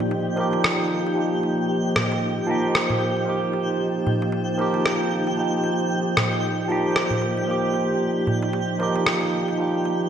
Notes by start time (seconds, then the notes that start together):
Already playing: F3 A#3 D#4 G4 D5 D#5 G5
0.00 darbuka tek
0.11 darbuka tek
0.36 F3 A#3 D#4 G4, darbuka ka, darbuka tek
0.53 darbuka tek
0.64 cross-stick
0.80 darbuka ka
1.07 darbuka ka
1.15 F3 A#3 D#4
1.19 G4
1.43 darbuka ka
1.86 F4
1.96 cross-stick, darbuka dum
2.12 darbuka tek
2.16 C5
2.47 F3 A#3 D#4, darbuka tek
2.51 G4
2.75 cross-stick
2.90 darbuka dum
3.01 darbuka tek
3.17 darbuka ka
3.26 F3 A#3 D#4 G4
3.53 darbuka ka
4.07 darbuka dum
4.22 darbuka tek
4.32 darbuka tek
4.57 F3 A#3 D#4 G4, darbuka ka, darbuka tek
4.74 darbuka tek
4.86 cross-stick
5.01 darbuka ka
5.27 darbuka ka
5.36 F3 A#3 D#4
5.41 G4
5.52 G4
5.64 darbuka ka
5.72 D5
6.17 cross-stick, darbuka dum
6.33 darbuka tek
6.68 F3 A#3 D#4 G4, darbuka tek
6.96 cross-stick
7.11 darbuka dum
7.22 darbuka tek
7.37 darbuka ka
7.47 F3 A#3 D#4 G4
7.74 darbuka ka
8.27 darbuka dum
8.43 darbuka tek
8.53 darbuka tek
8.79 F3 A#3 D#4 G4, darbuka ka, darbuka tek
8.96 darbuka tek
9.06 cross-stick
9.21 darbuka ka
9.48 darbuka ka
9.58 F3 A#3 D#4
9.62 G4
9.85 darbuka ka